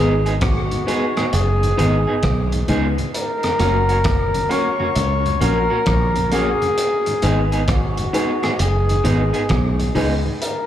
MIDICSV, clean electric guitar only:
0, 0, Header, 1, 2, 480
1, 0, Start_track
1, 0, Key_signature, 5, "minor"
1, 0, Tempo, 908816
1, 1659, Time_signature, 4, 2, 24, 8
1, 5632, End_track
2, 0, Start_track
2, 0, Title_t, "Clean electric guitar"
2, 0, Program_c, 0, 27
2, 0, Note_on_c, 0, 59, 81
2, 0, Note_on_c, 0, 63, 81
2, 0, Note_on_c, 0, 68, 80
2, 67, Note_off_c, 0, 59, 0
2, 68, Note_off_c, 0, 63, 0
2, 70, Note_off_c, 0, 68, 0
2, 136, Note_on_c, 0, 68, 63
2, 138, Note_on_c, 0, 63, 55
2, 142, Note_on_c, 0, 59, 47
2, 172, Note_off_c, 0, 68, 0
2, 173, Note_off_c, 0, 63, 0
2, 175, Note_off_c, 0, 59, 0
2, 460, Note_on_c, 0, 59, 67
2, 464, Note_on_c, 0, 63, 78
2, 466, Note_on_c, 0, 68, 86
2, 546, Note_off_c, 0, 59, 0
2, 548, Note_off_c, 0, 63, 0
2, 549, Note_off_c, 0, 68, 0
2, 617, Note_on_c, 0, 68, 55
2, 620, Note_on_c, 0, 63, 55
2, 622, Note_on_c, 0, 59, 48
2, 653, Note_off_c, 0, 68, 0
2, 654, Note_off_c, 0, 63, 0
2, 655, Note_off_c, 0, 59, 0
2, 937, Note_on_c, 0, 59, 88
2, 940, Note_on_c, 0, 63, 86
2, 943, Note_on_c, 0, 68, 97
2, 1025, Note_off_c, 0, 59, 0
2, 1026, Note_off_c, 0, 63, 0
2, 1028, Note_off_c, 0, 68, 0
2, 1094, Note_on_c, 0, 68, 50
2, 1098, Note_on_c, 0, 63, 50
2, 1101, Note_on_c, 0, 59, 45
2, 1132, Note_off_c, 0, 68, 0
2, 1133, Note_off_c, 0, 63, 0
2, 1135, Note_off_c, 0, 59, 0
2, 1418, Note_on_c, 0, 59, 83
2, 1421, Note_on_c, 0, 63, 83
2, 1423, Note_on_c, 0, 68, 88
2, 1505, Note_off_c, 0, 59, 0
2, 1507, Note_off_c, 0, 63, 0
2, 1508, Note_off_c, 0, 68, 0
2, 1896, Note_on_c, 0, 58, 70
2, 1899, Note_on_c, 0, 61, 72
2, 1901, Note_on_c, 0, 66, 90
2, 1984, Note_off_c, 0, 58, 0
2, 1986, Note_off_c, 0, 61, 0
2, 1987, Note_off_c, 0, 66, 0
2, 2054, Note_on_c, 0, 66, 51
2, 2057, Note_on_c, 0, 61, 49
2, 2060, Note_on_c, 0, 58, 43
2, 2091, Note_off_c, 0, 66, 0
2, 2093, Note_off_c, 0, 61, 0
2, 2094, Note_off_c, 0, 58, 0
2, 2374, Note_on_c, 0, 58, 80
2, 2378, Note_on_c, 0, 61, 76
2, 2380, Note_on_c, 0, 66, 85
2, 2463, Note_off_c, 0, 58, 0
2, 2465, Note_off_c, 0, 61, 0
2, 2466, Note_off_c, 0, 66, 0
2, 2533, Note_on_c, 0, 66, 51
2, 2537, Note_on_c, 0, 61, 52
2, 2540, Note_on_c, 0, 58, 48
2, 2571, Note_off_c, 0, 66, 0
2, 2573, Note_off_c, 0, 61, 0
2, 2574, Note_off_c, 0, 58, 0
2, 2855, Note_on_c, 0, 58, 75
2, 2859, Note_on_c, 0, 61, 76
2, 2862, Note_on_c, 0, 66, 83
2, 2944, Note_off_c, 0, 58, 0
2, 2945, Note_off_c, 0, 61, 0
2, 2947, Note_off_c, 0, 66, 0
2, 3011, Note_on_c, 0, 66, 65
2, 3014, Note_on_c, 0, 61, 52
2, 3017, Note_on_c, 0, 58, 54
2, 3050, Note_off_c, 0, 66, 0
2, 3051, Note_off_c, 0, 61, 0
2, 3053, Note_off_c, 0, 58, 0
2, 3337, Note_on_c, 0, 58, 87
2, 3342, Note_on_c, 0, 61, 83
2, 3344, Note_on_c, 0, 66, 97
2, 3424, Note_off_c, 0, 58, 0
2, 3427, Note_off_c, 0, 61, 0
2, 3428, Note_off_c, 0, 66, 0
2, 3817, Note_on_c, 0, 59, 77
2, 3819, Note_on_c, 0, 63, 82
2, 3823, Note_on_c, 0, 68, 80
2, 3904, Note_off_c, 0, 59, 0
2, 3905, Note_off_c, 0, 63, 0
2, 3907, Note_off_c, 0, 68, 0
2, 3973, Note_on_c, 0, 68, 59
2, 3978, Note_on_c, 0, 63, 52
2, 3979, Note_on_c, 0, 59, 52
2, 4010, Note_off_c, 0, 68, 0
2, 4013, Note_off_c, 0, 59, 0
2, 4013, Note_off_c, 0, 63, 0
2, 4295, Note_on_c, 0, 59, 79
2, 4298, Note_on_c, 0, 63, 78
2, 4300, Note_on_c, 0, 68, 88
2, 4383, Note_off_c, 0, 59, 0
2, 4385, Note_off_c, 0, 63, 0
2, 4386, Note_off_c, 0, 68, 0
2, 4452, Note_on_c, 0, 68, 74
2, 4454, Note_on_c, 0, 63, 60
2, 4458, Note_on_c, 0, 59, 49
2, 4490, Note_off_c, 0, 68, 0
2, 4491, Note_off_c, 0, 63, 0
2, 4493, Note_off_c, 0, 59, 0
2, 4774, Note_on_c, 0, 59, 85
2, 4778, Note_on_c, 0, 63, 87
2, 4782, Note_on_c, 0, 68, 85
2, 4863, Note_off_c, 0, 59, 0
2, 4865, Note_off_c, 0, 63, 0
2, 4867, Note_off_c, 0, 68, 0
2, 4929, Note_on_c, 0, 68, 59
2, 4932, Note_on_c, 0, 63, 57
2, 4935, Note_on_c, 0, 59, 52
2, 4968, Note_off_c, 0, 68, 0
2, 4969, Note_off_c, 0, 63, 0
2, 4971, Note_off_c, 0, 59, 0
2, 5256, Note_on_c, 0, 59, 76
2, 5257, Note_on_c, 0, 63, 91
2, 5261, Note_on_c, 0, 68, 84
2, 5343, Note_off_c, 0, 59, 0
2, 5344, Note_off_c, 0, 63, 0
2, 5346, Note_off_c, 0, 68, 0
2, 5632, End_track
0, 0, End_of_file